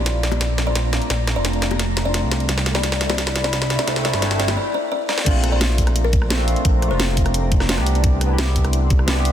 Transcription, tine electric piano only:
0.00 0.38 A3 medium
0.00 0.39 C4 medium
0.00 0.40 D4 medium
0.00 0.41 F4 medium
0.63 1.07 A3 medium
0.63 1.08 C4 medium
0.68 1.09 D4 medium
0.68 1.10 F4 medium
1.32 1.76 A3 medium
1.32 1.77 C4 medium
1.37 1.79 D4 medium
1.37 1.80 F4 medium
2.02 2.46 A3 medium
2.02 2.47 C4 medium
2.07 2.48 D4 medium
2.07 2.49 F4 medium
2.71 2.80 A3 medium
2.71 2.82 C4 medium
2.76 2.83 D4 medium
2.76 2.84 E4 medium
3.06 3.15 A3 medium
3.06 3.16 C4 medium
3.11 3.17 D4 medium
3.11 3.19 E4 medium
3.41 3.50 A3 medium
3.41 3.51 C4 medium
3.45 3.52 D4 medium
3.45 3.53 E4 medium
3.75 3.83 A3 medium
3.75 3.85 C4 medium
3.80 3.87 D4 medium
3.80 3.88 E4 medium
3.84 4.00 A3 medium
3.84 4.03 C4 medium
3.89 4.04 D4 medium
3.89 4.05 E4 medium
4.01 4.18 A3 medium
4.01 4.20 C4 medium
4.06 4.21 D4 medium
4.06 4.23 E4 medium
4.19 4.35 A3 medium
4.19 4.37 C4 medium
4.23 4.39 D4 medium
4.23 4.40 E4 medium
4.36 4.54 A3 medium
4.36 4.55 C4 medium
4.41 4.56 D4 medium
4.41 4.57 E4 medium
5.24 5.48 A3 loud
5.24 5.49 C4 medium
5.24 5.49 D4 medium
5.24 5.50 F4 loud
5.49 6.27 A3 medium
5.49 6.28 C4 medium
5.53 6.29 D4 medium
5.53 6.30 F4 medium
6.29 6.34 A3 medium
6.29 6.37 C4 medium
6.29 6.37 D4 medium
6.29 6.38 F4 medium
6.35 6.86 A3 medium
6.35 6.88 C4 medium
6.40 6.89 D4 medium
6.40 6.91 F4 loud
6.88 7.65 A3 medium
6.88 7.66 C4 medium
6.92 7.68 D4 medium
6.92 7.69 F4 medium
7.67 7.75 A3 medium
7.67 7.75 C4 medium
7.67 7.75 D4 medium
7.67 7.77 F4 loud
7.74 8.25 B3 medium
7.74 8.27 D4 medium
7.79 8.28 E4 medium
7.79 8.29 G4 loud
8.26 9.04 B3 medium
8.26 9.05 D4 medium
8.31 9.06 E4 medium
8.31 9.07 G4 medium
9.06 9.12 B3 medium
9.06 9.14 D4 medium
9.06 9.15 E4 medium
9.06 9.15 G4 medium
9.13 9.32 B3 medium
9.13 9.32 D4 medium
9.18 9.32 E4 medium
9.18 9.32 G4 medium

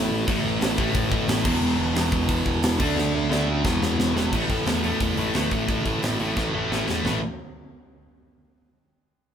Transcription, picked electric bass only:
0.10 0.26 A1 medium
0.28 0.43 A1 loud
0.44 0.60 A1 medium
0.61 0.77 A1 loud
0.78 0.94 A1 loud
0.95 1.11 A1 medium
1.12 1.27 A1 medium
1.28 1.44 A1 loud
1.46 1.60 E1 loud
1.61 1.77 E1 loud
1.78 1.94 E1 medium
1.95 2.11 E1 loud
2.12 2.28 E1 loud
2.29 2.45 E1 loud
2.46 2.61 E1 medium
2.62 2.78 E1 loud
2.80 2.96 D2 medium
2.96 3.12 D2 loud
3.14 3.29 D2 medium
3.30 3.46 D2 loud
3.47 3.63 D2 medium
3.65 3.80 E1 medium
3.81 3.97 E1 loud
3.98 4.14 E1 loud
4.15 4.31 E1 medium
4.33 4.45 A1 medium
4.50 4.62 A2 medium
4.66 4.90 E2 medium
5.01 5.13 E1 medium
5.17 5.29 A1 medium
5.34 5.46 D2 medium
5.52 5.64 A1 medium
5.69 5.81 A1 medium
5.86 5.98 A1 medium
6.03 6.15 A1 medium
6.19 6.32 A1 medium
6.37 6.61 A1 medium
6.70 6.82 A1 medium
6.88 7.00 E2 medium
7.05 7.21 A1 medium

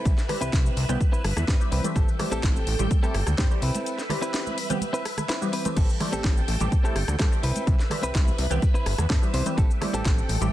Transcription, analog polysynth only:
0.28 0.86 E3 medium
0.28 0.86 G3 medium
0.28 0.86 C4 medium
0.28 0.86 G4 medium
0.28 0.86 B4 medium
0.89 0.98 E3 loud
0.89 0.98 G3 medium
0.89 0.98 B3 medium
0.89 0.98 C4 medium
0.89 0.98 G4 loud
1.60 1.81 E3 medium
1.60 1.81 G3 medium
1.60 1.81 B3 medium
1.60 1.81 C4 medium
1.60 1.82 G4 medium
1.84 2.17 E3 medium
1.84 2.17 G3 medium
1.84 2.17 A3 medium
1.84 2.17 C4 medium
1.84 2.17 G4 medium
2.19 2.76 E3 medium
2.19 2.76 G3 medium
2.19 2.77 A3 medium
2.19 2.77 C4 medium
2.19 2.77 G4 medium
2.79 3.00 E3 medium
2.79 3.00 G3 medium
2.79 3.00 A3 medium
2.79 3.00 C4 medium
2.79 3.01 G4 medium
3.03 3.17 E3 medium
3.03 3.17 G3 medium
3.03 3.18 A3 medium
3.03 3.18 C4 medium
3.03 3.18 G4 loud
3.38 3.48 E3 loud
3.38 3.48 G3 medium
3.38 3.48 A3 medium
3.38 3.48 C4 medium
3.38 3.48 G4 loud
3.51 3.61 E3 medium
3.51 3.61 G3 medium
3.51 3.61 A3 medium
3.51 3.61 C4 medium
3.51 3.61 G4 medium
4.09 4.67 E3 medium
4.09 4.67 G3 medium
4.09 4.67 C4 medium
4.09 4.67 G4 medium
4.09 4.67 B4 medium
4.69 4.79 E3 medium
4.69 4.79 G3 medium
4.69 4.79 B3 medium
4.69 4.79 C4 medium
4.69 4.79 G4 loud
5.41 5.62 E3 medium
5.41 5.62 G3 medium
5.41 5.62 B3 medium
5.41 5.63 C4 medium
5.41 5.63 G4 medium
5.65 5.98 E3 medium
5.65 5.98 G3 medium
5.65 5.98 A3 medium
5.65 5.98 C4 medium
5.65 5.98 G4 medium
6.00 6.57 E3 medium
6.00 6.57 G3 medium
6.00 6.58 A3 medium
6.00 6.58 C4 medium
6.00 6.58 G4 medium
6.60 6.81 E3 medium
6.60 6.81 G3 medium
6.60 6.82 A3 medium
6.60 6.82 C4 medium
6.60 6.82 G4 medium
6.84 6.99 E3 medium
6.84 6.99 G3 medium
6.84 6.99 A3 medium
6.84 6.99 C4 medium
6.84 6.99 G4 loud
7.19 7.29 E3 loud
7.19 7.29 G3 medium
7.19 7.29 A3 medium
7.19 7.29 C4 medium
7.19 7.29 G4 loud
7.31 7.42 E3 medium
7.31 7.42 G3 medium
7.31 7.42 A3 medium
7.31 7.42 C4 medium
7.31 7.42 G4 medium
7.90 8.48 E3 medium
7.90 8.48 G3 medium
7.90 8.48 C4 medium
7.90 8.48 G4 medium
7.90 8.48 B4 medium
8.50 8.59 E3 medium
8.50 8.60 G3 medium
8.50 8.60 B3 medium
8.50 8.60 C4 medium
8.50 8.60 G4 loud
9.22 9.43 E3 medium
9.22 9.43 G3 medium
9.22 9.43 B3 medium
9.22 9.43 C4 medium
9.22 9.43 G4 medium
9.46 9.79 E3 medium
9.46 9.79 G3 medium
9.46 9.79 A3 medium
9.46 9.79 C4 medium
9.46 9.79 G4 medium
9.81 10.38 E3 medium
9.81 10.38 G3 medium
9.81 10.38 A3 medium
9.81 10.39 C4 medium
9.81 10.39 G4 loud
10.41 10.53 E3 medium
10.41 10.53 G3 medium
10.41 10.53 A3 medium
10.41 10.53 C4 medium
10.41 10.53 G4 medium

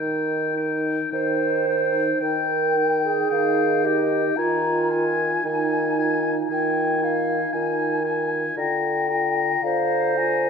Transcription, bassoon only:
0.00 1.00 D#3 soft
1.13 2.09 D#3 soft
2.22 3.19 D#3 soft
3.32 4.26 D#3 soft
4.38 5.32 D#3 soft
5.45 6.39 D#3 soft
6.51 7.42 D#3 soft
7.54 8.46 D#3 soft
8.57 9.52 D3 soft
9.64 10.50 D3 soft

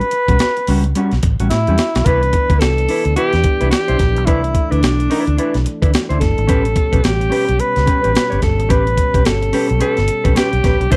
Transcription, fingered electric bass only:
0.29 0.38 B1 loud
0.68 0.92 C#2 medium
1.12 1.22 B1 medium
1.24 1.38 A1 medium
1.40 1.49 A1 medium
1.51 1.65 A2 loud
1.68 1.77 E2 medium
1.96 2.05 B1 medium
2.06 2.30 C2 loud
2.50 2.60 D2 medium
2.62 2.86 C2 medium
3.05 3.15 D2 medium
3.33 3.43 E2 medium
3.62 3.71 C2 medium
3.89 3.99 B1 medium
4.00 4.17 A#1 medium
4.17 4.28 B1 medium
4.28 4.52 C2 loud
4.72 4.81 D2 medium
4.83 5.07 B1 medium
5.28 5.37 D2 medium
5.55 5.64 B1 medium
5.83 5.92 D2 medium
6.10 6.20 D2 medium
6.21 6.36 G1 medium
6.38 6.49 G#1 medium
6.49 6.73 A1 loud
6.93 7.03 B1 medium
7.05 7.29 A1 medium
7.49 7.59 B1 medium
7.77 7.86 C#2 medium
8.05 8.14 A1 medium
8.32 8.42 G1 medium
8.43 8.59 G1 medium
8.59 8.69 G#1 loud
8.70 8.95 A1 medium
9.15 9.24 B1 medium
9.26 9.50 G1 medium
9.71 9.80 B1 medium
9.98 10.08 G1 medium
10.25 10.35 B1 medium
10.53 10.63 B1 medium
10.64 10.79 A#1 medium
10.80 10.90 B1 medium
10.92 10.97 C2 loud

